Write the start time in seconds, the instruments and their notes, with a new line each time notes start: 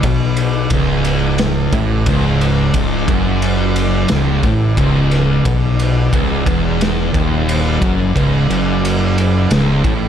0.03 analog synth bass B1, distorted electric guitar B2, kick, ride
0.37 ride
0.70 analog synth bass C#1, distorted electric guitar C#2, kick, ride
1.05 ride
1.38 snare, ride
1.72 analog synth bass A1, distorted electric guitar A2, kick, ride
2.06 analog synth bass C#1, distorted electric guitar C#2, kick, ride
2.41 ride
2.74 analog synth bass C#1, distorted electric guitar C#2, kick, ride
3.08 analog synth bass F#1, distorted electric guitar F#2, kick, ride
3.42 ride
3.76 ride
4.08 analog synth bass C#1, distorted electric guitar C#2, snare, ride
4.43 analog synth bass A1, distorted electric guitar A2, kick, ride
4.77 analog synth bass C#1, distorted electric guitar C#2, kick, ride
5.11 snare, ride
5.45 analog synth bass B1, distorted electric guitar B2, kick, ride
5.79 ride
6.12 analog synth bass C#1, distorted electric guitar C#2, kick, ride
6.45 analog synth bass E1, distorted electric guitar E2, kick, ride
6.81 snare, ride
7.13 analog synth bass D#1, distorted electric guitar D#2, kick, ride
7.49 ride
7.80 analog synth bass F#1, distorted electric guitar F#2, kick, ride
8.14 analog synth bass C#1, distorted electric guitar C#2, kick, ride
8.48 analog synth bass F#1, distorted electric guitar F#2, ride
8.85 ride
9.18 ride
9.51 analog synth bass C#1, distorted electric guitar C#2, snare, ride
9.84 analog synth bass A1, distorted electric guitar A2, kick, ride